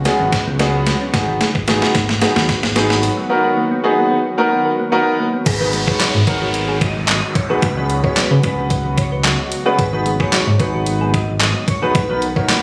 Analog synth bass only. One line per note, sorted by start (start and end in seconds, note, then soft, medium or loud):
0.20 0.39 G#1 medium
0.47 0.93 C#2 loud
1.14 1.42 G#1 loud
1.55 1.83 G#1 medium
1.95 2.23 G#1 loud
2.36 2.55 D#2 loud
2.63 3.10 G#1 loud
5.46 5.94 G#1 loud
6.14 6.23 G#2 medium
6.27 7.21 G#1 medium
7.62 8.10 C#2 loud
8.31 8.40 C#3 medium
8.44 9.37 C#2 medium
9.79 10.26 G#1 loud
10.47 10.56 G#2 medium
10.60 11.54 G#1 loud
11.95 12.42 B1 loud